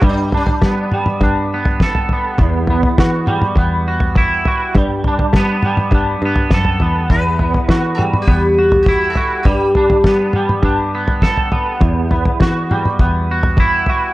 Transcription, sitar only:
0.09 0.36 D4 medium
0.37 0.90 D4 medium
7.10 7.71 B4 medium
7.71 7.95 A4 medium
7.95 8.03 A4 medium
8.22 8.82 G4 medium
8.83 9.10 F#4 medium
9.10 9.43 A4 medium
9.43 11.47 G4 medium

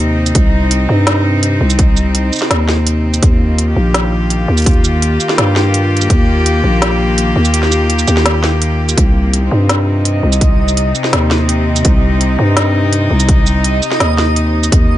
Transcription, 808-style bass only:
0.00 0.34 D#2 loud
0.35 0.88 C2 loud
0.89 1.59 G2 loud
1.61 2.31 C2 loud
2.51 3.21 D#2 loud
3.23 3.75 D#2 medium
3.76 4.47 A#1 loud
4.48 5.19 D#2 loud
5.38 6.09 G2 medium
6.10 6.62 D#2 loud
6.64 7.34 A#1 loud
7.36 8.06 D#2 medium
8.08 8.96 D#2 loud
8.97 9.50 C2 loud
9.51 10.22 G2 loud
10.23 10.94 C2 loud
11.13 11.84 D#2 loud
11.85 12.37 C2 loud
12.39 13.09 G2 loud
13.11 13.81 C2 loud
14.00 14.71 D#2 loud
14.72 14.98 D#2 loud

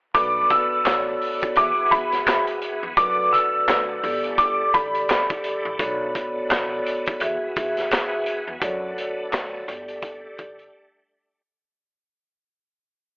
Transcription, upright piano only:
0.14 0.46 D6 loud
0.51 1.52 E6 medium
1.57 1.88 D6 medium
1.91 2.44 B5 medium
2.97 3.29 D6 loud
3.32 4.34 E6 medium
4.38 4.70 D6 medium
4.74 5.26 B5 medium

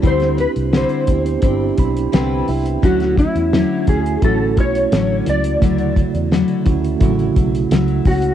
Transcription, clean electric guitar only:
0.07 0.38 C5 loud
0.40 0.50 B4 medium
0.77 2.11 C5 medium
2.85 3.18 F#4 medium
3.19 3.84 E4 medium
3.89 4.24 G#4 medium
4.25 4.59 A4 loud
4.60 5.29 C#5 loud
5.30 8.03 D5 medium
8.07 8.34 F#4 medium

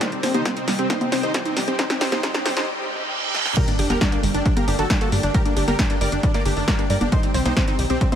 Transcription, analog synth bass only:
3.79 3.86 G1 medium
3.90 3.97 G1 medium
4.23 4.31 G1 loud
4.34 4.42 G1 medium
4.68 4.75 G1 loud
4.79 4.86 G1 medium
5.12 5.20 G2 medium
5.23 5.31 G1 medium
5.57 5.64 G1 medium
5.68 5.75 G1 medium
6.01 6.08 G1 loud
6.12 6.20 G1 medium
6.45 6.53 G1 loud
6.57 6.64 G1 medium
6.90 6.97 G2 medium
7.01 7.08 G1 medium
7.34 7.42 C2 medium
7.45 7.53 C2 medium
7.79 7.86 C2 loud
7.90 7.97 C2 medium

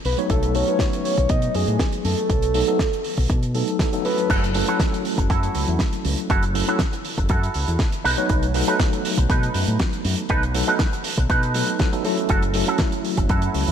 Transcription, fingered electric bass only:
0.05 0.14 B1 medium
0.30 0.62 B1 medium
1.18 1.26 B1 medium
1.30 1.47 B2 medium
1.55 1.64 F#2 medium
1.68 1.76 A2 medium
2.05 2.14 F#2 medium
2.30 2.61 B1 medium
3.18 3.26 B1 medium
3.30 3.61 B2 medium
4.30 4.62 F#1 medium
5.18 5.26 F#1 medium
5.30 5.48 F#2 medium
5.55 5.64 C#2 medium
5.68 5.76 E2 medium
6.05 6.14 C#2 medium
6.30 6.62 F#1 medium
7.18 7.26 F#1 medium
7.30 7.47 F#2 medium
7.55 7.64 C#2 medium
7.68 7.76 E2 loud
8.05 8.14 B1 medium
8.30 8.61 B1 medium
9.18 9.26 B1 medium
9.30 9.47 B2 medium
9.55 9.64 F#2 medium
9.68 9.76 A2 loud
10.05 10.14 F#2 medium
10.30 10.61 B1 medium
11.18 11.26 B1 medium
11.30 11.62 B2 medium
12.30 12.61 F#1 medium
13.18 13.26 F#1 medium
13.30 13.47 F#2 loud
13.54 13.64 C#2 medium
13.68 13.72 E2 loud

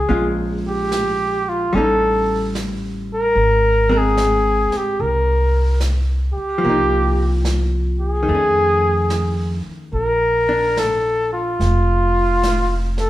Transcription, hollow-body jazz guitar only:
0.09 1.72 G#3 soft
0.09 1.73 C#4 soft
0.09 1.73 F4 soft
1.73 3.35 G3 soft
1.73 3.37 C#4 soft
1.77 3.37 D#4 soft
3.89 6.58 G#3 soft
3.89 6.62 C4 soft
3.89 6.63 A#4 soft
6.58 8.22 F3 soft
6.65 8.28 A#3 soft
6.69 8.31 D#4 soft
8.23 9.91 D#3 soft
8.29 9.94 A3 soft
8.35 9.97 C#4 soft
10.49 13.10 D4 soft

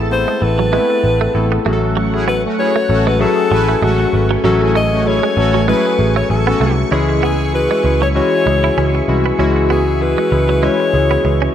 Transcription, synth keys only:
0.00 0.11 A3 loud
0.00 0.11 B3 loud
0.00 0.11 C4 loud
0.00 0.12 E4 loud
0.00 1.66 G#4 medium
0.00 0.12 A4 loud
0.00 0.73 B4 medium
0.11 0.34 A3 medium
0.11 0.34 B3 medium
0.11 0.34 C4 medium
0.11 0.34 E4 medium
0.11 0.35 A4 medium
0.41 0.65 A3 medium
0.41 0.65 B3 medium
0.41 0.65 C4 medium
0.41 0.65 E4 medium
0.41 0.65 A4 medium
0.72 0.96 A3 medium
0.72 0.96 B3 medium
0.72 0.96 C4 medium
0.72 0.96 E4 medium
0.72 0.96 B4 loud
1.03 1.27 A3 medium
1.03 1.27 B3 medium
1.03 1.27 C4 medium
1.03 1.27 E4 medium
1.03 1.27 B4 medium
1.34 1.58 A3 medium
1.34 1.58 B3 medium
1.34 1.58 C4 medium
1.34 1.58 E4 medium
1.34 1.58 A4 medium
1.65 2.16 F#3 medium
1.65 2.16 A3 medium
1.65 2.16 C#4 medium
1.65 2.17 F#4 medium
1.65 1.73 G#4 medium
1.73 2.20 A4 loud
2.27 2.50 F#3 medium
2.27 2.51 A3 medium
2.27 2.51 C#4 medium
2.27 2.51 F#4 medium
2.27 2.51 A4 medium
2.58 2.81 F#3 medium
2.58 2.82 A3 medium
2.58 2.82 C#4 medium
2.58 2.82 F#4 medium
2.58 2.82 B4 medium
2.89 3.12 F#3 medium
2.89 3.13 A3 medium
2.89 3.13 C#4 medium
2.89 3.13 F#4 medium
2.89 3.13 A4 medium
3.20 3.43 F#3 loud
3.20 3.43 A3 medium
3.20 3.43 C#4 medium
3.20 3.44 F#4 medium
3.20 3.44 G#4 loud
3.51 3.74 F#3 medium
3.51 3.74 A3 medium
3.51 3.74 C#4 medium
3.51 3.75 F#4 medium
3.51 3.75 G#4 medium
3.82 4.05 F#3 medium
3.82 4.05 A3 medium
3.82 4.05 C#4 medium
3.82 4.06 F#4 medium
3.82 4.06 A4 medium
4.13 4.36 F#3 medium
4.13 4.36 A3 medium
4.13 4.36 C#4 medium
4.13 4.36 F#4 medium
4.13 4.37 B4 medium
4.44 4.67 F#3 loud
4.44 4.67 A3 loud
4.44 4.67 C#4 loud
4.44 4.67 F#4 loud
4.44 4.68 A4 loud
4.75 4.98 F#3 medium
4.75 4.98 A3 medium
4.75 4.98 C#4 medium
4.75 4.98 F#4 medium
4.75 4.99 A4 medium
5.05 5.29 F#3 medium
5.05 5.29 A3 medium
5.05 5.29 C#4 medium
5.05 5.29 F#4 medium
5.05 5.29 A4 medium
5.36 5.60 F#3 medium
5.36 5.60 A3 medium
5.36 5.60 C#4 medium
5.36 5.60 F#4 medium
5.36 5.60 B4 medium
5.67 5.91 F#3 medium
5.67 5.91 A3 medium
5.67 5.91 C#4 medium
5.67 5.91 F#4 medium
5.67 5.91 B4 loud
5.98 6.22 F#3 medium
5.98 6.22 A3 medium
5.98 6.22 C#4 medium
5.98 6.22 F#4 medium
5.98 6.22 G#4 medium
6.29 6.52 F#3 medium
6.29 6.53 A3 medium
6.29 6.53 C#4 medium
6.29 6.53 F#4 medium
6.29 6.53 A4 medium
6.60 6.83 F#3 medium
6.60 6.84 A3 medium
6.60 6.84 C#4 medium
6.60 6.84 F#4 medium
6.60 6.84 A4 medium
6.91 7.14 E3 loud
6.91 7.15 G#3 loud
6.91 7.15 C#4 loud
6.91 7.15 E4 loud
6.91 7.15 G#4 loud
7.22 7.45 E3 medium
7.22 7.46 G#3 medium
7.22 7.46 C#4 medium
7.22 7.46 E4 medium
7.22 7.46 B4 medium
7.53 7.76 E3 medium
7.53 7.76 G#3 medium
7.53 7.77 C#4 medium
7.53 7.77 E4 medium
7.53 7.77 F#4 medium
7.84 8.07 E3 medium
7.84 8.07 G#3 medium
7.84 8.07 C#4 medium
7.84 8.08 E4 medium
7.84 8.08 G#4 medium
8.15 8.38 E3 medium
8.15 8.38 G#3 medium
8.15 8.38 C#4 medium
8.15 8.39 E4 medium
8.15 8.39 F#4 loud
8.46 8.69 E3 medium
8.46 8.69 G#3 medium
8.46 8.69 C#4 medium
8.46 8.70 E4 medium
8.46 8.70 G#4 medium
8.77 9.00 E3 medium
8.77 9.00 G#3 medium
8.77 9.00 C#4 medium
8.77 9.00 E4 medium
8.77 9.01 G#4 medium
9.08 9.31 E3 medium
9.08 9.31 G#3 medium
9.08 9.31 C#4 medium
9.08 9.31 E4 medium
9.08 9.32 F#4 loud
9.39 9.62 E3 loud
9.39 9.62 G#3 loud
9.39 9.62 C#4 loud
9.39 9.62 E4 loud
9.39 9.62 F#4 loud
9.70 9.93 E3 medium
9.70 9.93 G#3 medium
9.70 9.93 C#4 medium
9.70 9.93 E4 medium
9.70 9.93 G#4 medium
10.00 10.24 E3 medium
10.00 10.24 G#3 medium
10.00 10.24 C#4 medium
10.00 10.24 E4 medium
10.00 10.24 G#4 medium
10.31 10.55 E3 medium
10.31 10.55 G#3 medium
10.31 10.55 C#4 medium
10.31 10.55 E4 medium
10.31 10.55 G#4 medium
10.62 10.86 E3 loud
10.62 10.86 G#3 medium
10.62 10.86 C#4 medium
10.62 10.86 E4 medium
10.62 10.86 B4 loud
10.93 11.16 E3 medium
10.93 11.17 G#3 medium
10.93 11.17 C#4 medium
10.93 11.17 E4 medium
10.93 11.17 G#4 medium
11.24 11.47 E3 medium
11.24 11.48 G#3 medium
11.24 11.48 C#4 medium
11.24 11.48 E4 medium
11.24 11.48 G#4 medium

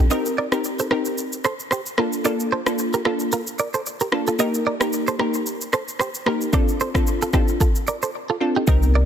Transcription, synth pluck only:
0.10 0.31 C4 medium
0.10 0.31 D#4 medium
0.10 0.31 G4 medium
0.10 0.31 A#4 loud
0.52 0.88 C4 medium
0.52 0.88 D#4 medium
0.52 0.88 G4 medium
0.52 0.88 A#4 medium
0.91 1.16 C4 medium
0.91 1.16 D#4 medium
0.91 1.16 G4 medium
0.91 1.16 A#4 medium
1.98 2.19 A#3 medium
1.98 2.19 D4 medium
1.98 2.19 F4 medium
1.98 2.19 A4 medium
2.25 2.45 A#3 medium
2.25 2.45 D4 medium
2.25 2.46 F4 medium
2.25 2.46 A4 loud
2.66 3.02 A#3 medium
2.66 3.02 D4 medium
2.66 3.02 F4 medium
2.66 3.02 A4 medium
3.05 3.30 A#3 medium
3.05 3.30 D4 medium
3.05 3.30 F4 medium
3.05 3.30 A4 medium
4.12 4.33 A#3 medium
4.12 4.33 D4 medium
4.12 4.33 F4 medium
4.12 4.33 A4 medium
4.39 4.60 A#3 medium
4.39 4.60 D#4 medium
4.39 4.60 G4 medium
4.39 4.60 A#4 loud
4.80 5.16 A#3 medium
4.80 5.16 D#4 medium
4.80 5.16 G4 medium
4.80 5.17 A#4 medium
5.19 5.44 A#3 medium
5.19 5.44 D#4 medium
5.19 5.44 G4 medium
5.19 5.44 A#4 medium
6.26 6.47 A#3 medium
6.26 6.47 D#4 medium
6.26 6.47 G4 medium
6.26 6.47 A#4 medium
6.53 6.74 C4 medium
6.53 6.74 D4 medium
6.53 6.74 F4 medium
6.53 6.74 A4 loud
6.94 7.30 C4 medium
6.94 7.31 D4 medium
6.94 7.31 F4 medium
6.94 7.31 A4 medium
7.33 7.58 C4 medium
7.33 7.58 D4 medium
7.33 7.59 F4 medium
7.33 7.59 A4 medium
8.40 8.61 C4 medium
8.40 8.61 D4 medium
8.40 8.62 F4 medium
8.40 8.62 A4 medium
8.67 8.88 C4 loud
8.67 8.88 D#4 medium
8.67 8.88 G4 medium
8.67 8.88 A#4 loud

